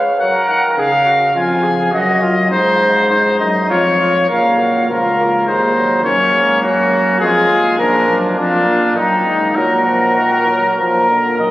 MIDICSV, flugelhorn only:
0, 0, Header, 1, 2, 480
1, 0, Start_track
1, 0, Key_signature, 6, "major"
1, 0, Tempo, 583090
1, 648, Time_signature, 3, 2, 24, 8
1, 6416, Key_signature, -6, "minor"
1, 7375, Tempo, 606061
1, 9393, End_track
2, 0, Start_track
2, 0, Title_t, "Flugelhorn"
2, 0, Program_c, 0, 56
2, 159, Note_on_c, 0, 70, 87
2, 631, Note_off_c, 0, 70, 0
2, 638, Note_on_c, 0, 68, 73
2, 747, Note_off_c, 0, 68, 0
2, 866, Note_on_c, 0, 66, 68
2, 977, Note_off_c, 0, 66, 0
2, 1102, Note_on_c, 0, 65, 79
2, 1343, Note_on_c, 0, 68, 70
2, 1356, Note_off_c, 0, 65, 0
2, 1579, Note_on_c, 0, 66, 82
2, 1591, Note_off_c, 0, 68, 0
2, 1820, Note_off_c, 0, 66, 0
2, 1824, Note_on_c, 0, 65, 73
2, 1936, Note_off_c, 0, 65, 0
2, 2062, Note_on_c, 0, 63, 79
2, 2544, Note_off_c, 0, 63, 0
2, 2564, Note_on_c, 0, 63, 79
2, 3034, Note_off_c, 0, 63, 0
2, 3039, Note_on_c, 0, 65, 70
2, 3151, Note_off_c, 0, 65, 0
2, 3285, Note_on_c, 0, 65, 72
2, 3397, Note_off_c, 0, 65, 0
2, 3525, Note_on_c, 0, 70, 64
2, 3776, Note_on_c, 0, 66, 54
2, 3789, Note_off_c, 0, 70, 0
2, 4026, Note_on_c, 0, 65, 63
2, 4039, Note_off_c, 0, 66, 0
2, 4505, Note_on_c, 0, 63, 66
2, 4518, Note_off_c, 0, 65, 0
2, 4976, Note_off_c, 0, 63, 0
2, 4981, Note_on_c, 0, 61, 76
2, 5443, Note_off_c, 0, 61, 0
2, 5448, Note_on_c, 0, 61, 68
2, 5922, Note_off_c, 0, 61, 0
2, 5932, Note_on_c, 0, 65, 78
2, 6404, Note_off_c, 0, 65, 0
2, 6419, Note_on_c, 0, 62, 75
2, 6885, Note_off_c, 0, 62, 0
2, 6899, Note_on_c, 0, 65, 76
2, 7368, Note_off_c, 0, 65, 0
2, 7386, Note_on_c, 0, 63, 77
2, 7847, Note_off_c, 0, 63, 0
2, 7860, Note_on_c, 0, 66, 72
2, 8688, Note_off_c, 0, 66, 0
2, 8823, Note_on_c, 0, 70, 72
2, 9290, Note_off_c, 0, 70, 0
2, 9302, Note_on_c, 0, 75, 94
2, 9393, Note_off_c, 0, 75, 0
2, 9393, End_track
0, 0, End_of_file